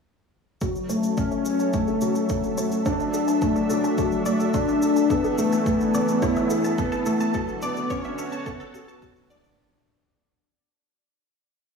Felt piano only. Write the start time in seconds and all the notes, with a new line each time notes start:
0.61 F#3
0.89 A3
1.17 C#4
1.74 A3
2.01 F#3
2.30 F#3
2.58 A3
2.86 D4
3.42 A3
3.70 F#3
3.97 F#3
4.26 A3
4.54 D4
5.10 B3
5.38 A3
5.66 A3
5.94 B3
6.22 E4
6.78 B3
7.06 A3
7.34 F#3
7.62 B3
7.89 C#4
8.46 B3
8.74 F#4
9.02 F#4
9.30 D4